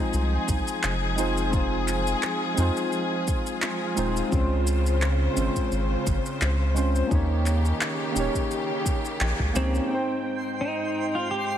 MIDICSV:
0, 0, Header, 1, 7, 480
1, 0, Start_track
1, 0, Key_signature, -4, "major"
1, 0, Tempo, 697674
1, 1054, Time_signature, 4, 2, 24, 8
1, 7966, End_track
2, 0, Start_track
2, 0, Title_t, "Synth texture"
2, 0, Program_c, 0, 99
2, 6815, Note_on_c, 0, 84, 75
2, 7966, Note_off_c, 0, 84, 0
2, 7966, End_track
3, 0, Start_track
3, 0, Title_t, "Clean electric guitar"
3, 0, Program_c, 1, 27
3, 6581, Note_on_c, 1, 60, 116
3, 7030, Note_off_c, 1, 60, 0
3, 7300, Note_on_c, 1, 63, 68
3, 7671, Note_on_c, 1, 65, 71
3, 7679, Note_off_c, 1, 63, 0
3, 7770, Note_off_c, 1, 65, 0
3, 7780, Note_on_c, 1, 67, 76
3, 7966, Note_off_c, 1, 67, 0
3, 7966, End_track
4, 0, Start_track
4, 0, Title_t, "Synth keys"
4, 0, Program_c, 2, 88
4, 0, Control_c, 2, 64, 127
4, 0, Note_on_c, 2, 56, 76
4, 0, Note_on_c, 2, 60, 64
4, 0, Note_on_c, 2, 63, 68
4, 0, Note_on_c, 2, 65, 68
4, 0, Note_on_c, 2, 72, 79
4, 772, Note_off_c, 2, 56, 0
4, 780, Note_off_c, 2, 60, 0
4, 786, Note_off_c, 2, 63, 0
4, 794, Note_off_c, 2, 65, 0
4, 798, Note_on_c, 2, 56, 74
4, 800, Note_off_c, 2, 72, 0
4, 806, Note_on_c, 2, 60, 66
4, 812, Note_on_c, 2, 63, 70
4, 819, Note_on_c, 2, 65, 68
4, 825, Note_on_c, 2, 72, 82
4, 873, Note_off_c, 2, 56, 0
4, 877, Note_off_c, 2, 60, 0
4, 880, Note_off_c, 2, 63, 0
4, 883, Note_off_c, 2, 65, 0
4, 887, Note_off_c, 2, 72, 0
4, 1024, Note_on_c, 2, 56, 73
4, 1038, Note_on_c, 2, 60, 73
4, 1052, Note_on_c, 2, 63, 67
4, 1066, Note_on_c, 2, 65, 70
4, 1079, Note_on_c, 2, 72, 83
4, 1733, Note_off_c, 2, 56, 0
4, 1740, Note_off_c, 2, 60, 0
4, 1746, Note_on_c, 2, 56, 76
4, 1747, Note_off_c, 2, 63, 0
4, 1754, Note_off_c, 2, 65, 0
4, 1760, Note_off_c, 2, 72, 0
4, 1760, Note_on_c, 2, 60, 70
4, 1774, Note_on_c, 2, 63, 67
4, 1788, Note_on_c, 2, 65, 68
4, 1801, Note_on_c, 2, 72, 82
4, 2694, Note_off_c, 2, 56, 0
4, 2701, Note_off_c, 2, 60, 0
4, 2708, Note_off_c, 2, 63, 0
4, 2715, Note_off_c, 2, 65, 0
4, 2718, Note_on_c, 2, 56, 75
4, 2721, Note_off_c, 2, 72, 0
4, 2724, Note_on_c, 2, 60, 64
4, 2732, Note_on_c, 2, 63, 70
4, 2739, Note_on_c, 2, 65, 69
4, 2745, Note_on_c, 2, 72, 84
4, 2793, Note_off_c, 2, 56, 0
4, 2796, Note_off_c, 2, 60, 0
4, 2800, Note_off_c, 2, 63, 0
4, 2803, Note_off_c, 2, 65, 0
4, 2806, Note_off_c, 2, 72, 0
4, 2945, Note_on_c, 2, 56, 79
4, 2959, Note_on_c, 2, 60, 71
4, 2972, Note_on_c, 2, 61, 69
4, 2983, Control_c, 2, 64, 0
4, 2986, Note_on_c, 2, 65, 66
4, 3000, Note_on_c, 2, 72, 85
4, 3119, Control_c, 2, 64, 127
4, 3653, Note_off_c, 2, 56, 0
4, 3660, Note_off_c, 2, 60, 0
4, 3666, Note_on_c, 2, 56, 74
4, 3667, Note_off_c, 2, 61, 0
4, 3674, Note_off_c, 2, 65, 0
4, 3680, Note_on_c, 2, 60, 69
4, 3681, Note_off_c, 2, 72, 0
4, 3694, Note_on_c, 2, 61, 65
4, 3707, Note_on_c, 2, 65, 67
4, 3720, Note_on_c, 2, 72, 82
4, 4614, Note_off_c, 2, 56, 0
4, 4621, Note_off_c, 2, 60, 0
4, 4628, Note_off_c, 2, 61, 0
4, 4634, Note_off_c, 2, 65, 0
4, 4639, Note_on_c, 2, 56, 72
4, 4641, Note_off_c, 2, 72, 0
4, 4645, Note_on_c, 2, 60, 68
4, 4652, Note_on_c, 2, 61, 72
4, 4659, Note_on_c, 2, 65, 70
4, 4666, Note_on_c, 2, 72, 81
4, 4713, Note_off_c, 2, 56, 0
4, 4716, Note_off_c, 2, 60, 0
4, 4720, Note_off_c, 2, 61, 0
4, 4723, Note_off_c, 2, 65, 0
4, 4727, Note_off_c, 2, 72, 0
4, 4865, Note_on_c, 2, 58, 74
4, 4879, Note_on_c, 2, 61, 76
4, 4893, Note_on_c, 2, 63, 71
4, 4903, Control_c, 2, 64, 0
4, 4907, Note_on_c, 2, 67, 69
4, 4920, Note_on_c, 2, 73, 84
4, 5035, Control_c, 2, 64, 127
4, 5573, Note_off_c, 2, 58, 0
4, 5580, Note_off_c, 2, 61, 0
4, 5586, Note_on_c, 2, 58, 76
4, 5587, Note_off_c, 2, 63, 0
4, 5594, Note_off_c, 2, 67, 0
4, 5600, Note_on_c, 2, 61, 71
4, 5601, Note_off_c, 2, 73, 0
4, 5613, Note_on_c, 2, 63, 68
4, 5627, Note_on_c, 2, 67, 71
4, 5641, Note_on_c, 2, 73, 87
4, 6534, Note_off_c, 2, 58, 0
4, 6541, Note_off_c, 2, 61, 0
4, 6547, Note_off_c, 2, 63, 0
4, 6554, Note_off_c, 2, 67, 0
4, 6559, Note_on_c, 2, 58, 79
4, 6561, Note_off_c, 2, 73, 0
4, 6566, Note_on_c, 2, 61, 66
4, 6573, Note_on_c, 2, 63, 68
4, 6580, Note_on_c, 2, 67, 68
4, 6586, Note_on_c, 2, 73, 81
4, 6633, Note_off_c, 2, 58, 0
4, 6637, Note_off_c, 2, 61, 0
4, 6641, Note_off_c, 2, 63, 0
4, 6644, Note_off_c, 2, 67, 0
4, 6647, Note_off_c, 2, 73, 0
4, 6787, Note_on_c, 2, 56, 72
4, 6800, Note_on_c, 2, 60, 64
4, 6814, Note_on_c, 2, 63, 64
4, 6824, Control_c, 2, 64, 0
4, 6828, Note_on_c, 2, 79, 69
4, 6841, Note_on_c, 2, 72, 84
4, 6944, Control_c, 2, 64, 127
4, 7966, Note_off_c, 2, 56, 0
4, 7966, Note_off_c, 2, 60, 0
4, 7966, Note_off_c, 2, 63, 0
4, 7966, Note_off_c, 2, 72, 0
4, 7966, Note_off_c, 2, 79, 0
4, 7966, End_track
5, 0, Start_track
5, 0, Title_t, "String section"
5, 0, Program_c, 3, 48
5, 0, Note_on_c, 3, 53, 80
5, 0, Note_on_c, 3, 63, 71
5, 0, Note_on_c, 3, 68, 90
5, 793, Note_off_c, 3, 63, 0
5, 815, Note_on_c, 3, 65, 70
5, 2945, Note_off_c, 3, 53, 0
5, 2945, Note_off_c, 3, 68, 0
5, 2975, Note_on_c, 3, 49, 84
5, 2975, Note_on_c, 3, 72, 77
5, 4867, Note_off_c, 3, 65, 0
5, 4875, Note_off_c, 3, 49, 0
5, 4875, Note_off_c, 3, 72, 0
5, 4892, Note_on_c, 3, 67, 89
5, 4893, Note_on_c, 3, 49, 74
5, 4893, Note_on_c, 3, 51, 82
5, 6794, Note_off_c, 3, 49, 0
5, 6794, Note_off_c, 3, 51, 0
5, 6794, Note_off_c, 3, 67, 0
5, 6809, Note_on_c, 3, 44, 72
5, 6809, Note_on_c, 3, 79, 61
5, 6810, Note_on_c, 3, 60, 79
5, 7966, Note_off_c, 3, 44, 0
5, 7966, Note_off_c, 3, 60, 0
5, 7966, Note_off_c, 3, 79, 0
5, 7966, End_track
6, 0, Start_track
6, 0, Title_t, "Analog synth bass"
6, 0, Program_c, 4, 38
6, 92, Note_on_c, 4, 36, 102
6, 259, Note_off_c, 4, 36, 0
6, 332, Note_on_c, 4, 36, 88
6, 420, Note_off_c, 4, 36, 0
6, 575, Note_on_c, 4, 29, 78
6, 1475, Note_off_c, 4, 29, 0
6, 1773, Note_on_c, 4, 41, 94
6, 1860, Note_off_c, 4, 41, 0
6, 2733, Note_on_c, 4, 27, 90
6, 2900, Note_off_c, 4, 27, 0
6, 2974, Note_on_c, 4, 37, 94
6, 3635, Note_off_c, 4, 37, 0
6, 3692, Note_on_c, 4, 32, 93
6, 3779, Note_off_c, 4, 32, 0
6, 3934, Note_on_c, 4, 32, 97
6, 4100, Note_off_c, 4, 32, 0
6, 4173, Note_on_c, 4, 32, 87
6, 4260, Note_off_c, 4, 32, 0
6, 4412, Note_on_c, 4, 37, 79
6, 4834, Note_off_c, 4, 37, 0
6, 4893, Note_on_c, 4, 39, 76
6, 5315, Note_off_c, 4, 39, 0
6, 5613, Note_on_c, 4, 27, 98
6, 5700, Note_off_c, 4, 27, 0
6, 6333, Note_on_c, 4, 34, 92
6, 6420, Note_off_c, 4, 34, 0
6, 6464, Note_on_c, 4, 37, 95
6, 6536, Note_off_c, 4, 37, 0
6, 6572, Note_on_c, 4, 37, 93
6, 6739, Note_off_c, 4, 37, 0
6, 7966, End_track
7, 0, Start_track
7, 0, Title_t, "Drums"
7, 92, Note_on_c, 9, 82, 33
7, 160, Note_off_c, 9, 82, 0
7, 332, Note_on_c, 9, 36, 94
7, 333, Note_on_c, 9, 82, 74
7, 401, Note_off_c, 9, 36, 0
7, 401, Note_off_c, 9, 82, 0
7, 464, Note_on_c, 9, 82, 40
7, 533, Note_off_c, 9, 82, 0
7, 572, Note_on_c, 9, 39, 96
7, 573, Note_on_c, 9, 82, 32
7, 641, Note_off_c, 9, 39, 0
7, 642, Note_off_c, 9, 82, 0
7, 812, Note_on_c, 9, 82, 75
7, 881, Note_off_c, 9, 82, 0
7, 944, Note_on_c, 9, 82, 40
7, 1013, Note_off_c, 9, 82, 0
7, 1052, Note_on_c, 9, 82, 30
7, 1053, Note_on_c, 9, 36, 111
7, 1121, Note_off_c, 9, 82, 0
7, 1122, Note_off_c, 9, 36, 0
7, 1292, Note_on_c, 9, 39, 30
7, 1293, Note_on_c, 9, 82, 72
7, 1361, Note_off_c, 9, 39, 0
7, 1362, Note_off_c, 9, 82, 0
7, 1423, Note_on_c, 9, 82, 42
7, 1492, Note_off_c, 9, 82, 0
7, 1532, Note_on_c, 9, 39, 88
7, 1532, Note_on_c, 9, 82, 30
7, 1601, Note_off_c, 9, 39, 0
7, 1601, Note_off_c, 9, 82, 0
7, 1772, Note_on_c, 9, 82, 68
7, 1841, Note_off_c, 9, 82, 0
7, 1903, Note_on_c, 9, 82, 38
7, 1972, Note_off_c, 9, 82, 0
7, 2013, Note_on_c, 9, 82, 29
7, 2081, Note_off_c, 9, 82, 0
7, 2252, Note_on_c, 9, 82, 72
7, 2254, Note_on_c, 9, 36, 88
7, 2321, Note_off_c, 9, 82, 0
7, 2322, Note_off_c, 9, 36, 0
7, 2384, Note_on_c, 9, 82, 39
7, 2453, Note_off_c, 9, 82, 0
7, 2491, Note_on_c, 9, 39, 99
7, 2491, Note_on_c, 9, 82, 33
7, 2559, Note_off_c, 9, 39, 0
7, 2560, Note_off_c, 9, 82, 0
7, 2732, Note_on_c, 9, 82, 72
7, 2800, Note_off_c, 9, 82, 0
7, 2865, Note_on_c, 9, 82, 43
7, 2934, Note_off_c, 9, 82, 0
7, 2973, Note_on_c, 9, 82, 28
7, 2974, Note_on_c, 9, 36, 111
7, 3041, Note_off_c, 9, 82, 0
7, 3042, Note_off_c, 9, 36, 0
7, 3213, Note_on_c, 9, 82, 74
7, 3282, Note_off_c, 9, 82, 0
7, 3345, Note_on_c, 9, 82, 39
7, 3414, Note_off_c, 9, 82, 0
7, 3452, Note_on_c, 9, 39, 92
7, 3453, Note_on_c, 9, 82, 29
7, 3521, Note_off_c, 9, 39, 0
7, 3522, Note_off_c, 9, 82, 0
7, 3693, Note_on_c, 9, 82, 70
7, 3762, Note_off_c, 9, 82, 0
7, 3825, Note_on_c, 9, 36, 58
7, 3826, Note_on_c, 9, 82, 41
7, 3893, Note_off_c, 9, 36, 0
7, 3894, Note_off_c, 9, 82, 0
7, 3933, Note_on_c, 9, 82, 30
7, 4002, Note_off_c, 9, 82, 0
7, 4173, Note_on_c, 9, 36, 92
7, 4174, Note_on_c, 9, 82, 72
7, 4242, Note_off_c, 9, 36, 0
7, 4243, Note_off_c, 9, 82, 0
7, 4305, Note_on_c, 9, 82, 38
7, 4374, Note_off_c, 9, 82, 0
7, 4413, Note_on_c, 9, 39, 94
7, 4414, Note_on_c, 9, 82, 32
7, 4482, Note_off_c, 9, 39, 0
7, 4482, Note_off_c, 9, 82, 0
7, 4653, Note_on_c, 9, 82, 68
7, 4722, Note_off_c, 9, 82, 0
7, 4785, Note_on_c, 9, 82, 39
7, 4854, Note_off_c, 9, 82, 0
7, 4893, Note_on_c, 9, 36, 113
7, 4894, Note_on_c, 9, 82, 27
7, 4962, Note_off_c, 9, 36, 0
7, 4963, Note_off_c, 9, 82, 0
7, 5132, Note_on_c, 9, 39, 33
7, 5133, Note_on_c, 9, 82, 71
7, 5201, Note_off_c, 9, 39, 0
7, 5202, Note_off_c, 9, 82, 0
7, 5264, Note_on_c, 9, 82, 41
7, 5333, Note_off_c, 9, 82, 0
7, 5373, Note_on_c, 9, 39, 99
7, 5374, Note_on_c, 9, 82, 30
7, 5442, Note_off_c, 9, 39, 0
7, 5443, Note_off_c, 9, 82, 0
7, 5614, Note_on_c, 9, 82, 73
7, 5683, Note_off_c, 9, 82, 0
7, 5744, Note_on_c, 9, 36, 57
7, 5747, Note_on_c, 9, 82, 40
7, 5813, Note_off_c, 9, 36, 0
7, 5816, Note_off_c, 9, 82, 0
7, 5855, Note_on_c, 9, 82, 31
7, 5924, Note_off_c, 9, 82, 0
7, 6093, Note_on_c, 9, 36, 90
7, 6096, Note_on_c, 9, 82, 73
7, 6161, Note_off_c, 9, 36, 0
7, 6165, Note_off_c, 9, 82, 0
7, 6226, Note_on_c, 9, 82, 41
7, 6295, Note_off_c, 9, 82, 0
7, 6334, Note_on_c, 9, 39, 96
7, 6334, Note_on_c, 9, 82, 32
7, 6403, Note_off_c, 9, 39, 0
7, 6403, Note_off_c, 9, 82, 0
7, 6463, Note_on_c, 9, 36, 55
7, 6532, Note_off_c, 9, 36, 0
7, 6574, Note_on_c, 9, 82, 73
7, 6643, Note_off_c, 9, 82, 0
7, 6707, Note_on_c, 9, 82, 38
7, 6776, Note_off_c, 9, 82, 0
7, 6816, Note_on_c, 9, 82, 26
7, 6885, Note_off_c, 9, 82, 0
7, 7056, Note_on_c, 9, 82, 63
7, 7125, Note_off_c, 9, 82, 0
7, 7186, Note_on_c, 9, 82, 35
7, 7255, Note_off_c, 9, 82, 0
7, 7534, Note_on_c, 9, 82, 70
7, 7603, Note_off_c, 9, 82, 0
7, 7667, Note_on_c, 9, 82, 35
7, 7735, Note_off_c, 9, 82, 0
7, 7774, Note_on_c, 9, 82, 27
7, 7843, Note_off_c, 9, 82, 0
7, 7966, End_track
0, 0, End_of_file